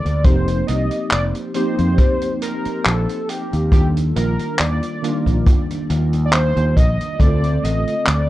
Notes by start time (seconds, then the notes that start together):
Already playing: G3 A#3 D4 F4 A4 D5
0.05 D2, closed hi-hat
0.23 F1 F3 A#3 C4 D#4 G4 C5, kick, closed hi-hat
0.48 closed hi-hat
0.67 C2 D#5, closed hi-hat
0.91 closed hi-hat
1.11 F1 D5, clap, closed hi-hat
1.35 closed hi-hat
1.54 F3 A#3 C4 D#4 G4 C5, closed hi-hat
1.79 F2, closed hi-hat
1.98 kick, closed hi-hat
2.22 closed hi-hat
2.42 A#4, closed hi-hat
2.65 muted fretless electric bass stroke, closed hi-hat
2.85 A#1 A4, clap, closed hi-hat
3.09 closed hi-hat
3.29 G4, closed hi-hat
3.53 D#2, closed hi-hat
3.71 D#3 G3 A#3 D4 F4 G4, kick, closed hi-hat
3.97 closed hi-hat
4.16 A#1 A#4, closed hi-hat
4.39 closed hi-hat
4.59 D#2 D5, clap, closed hi-hat
4.83 closed hi-hat
5.02 D#3 G3 A#3 D4 F4, closed hi-hat
5.26 A#1, kick, closed hi-hat
5.46 kick, closed hi-hat
5.70 closed hi-hat
5.90 D#2, closed hi-hat
6.13 closed hi-hat
6.25 D5
6.33 C5, clap, closed hi-hat
6.56 D#2, closed hi-hat
6.76 A#1 D#5, kick, closed hi-hat
7.01 closed hi-hat
7.18 D2 D3 A3 C4 F4 A4 D5, kick, closed hi-hat
7.44 closed hi-hat
7.63 A1 D#5, closed hi-hat
7.88 closed hi-hat
8.07 D2 D5, clap, closed hi-hat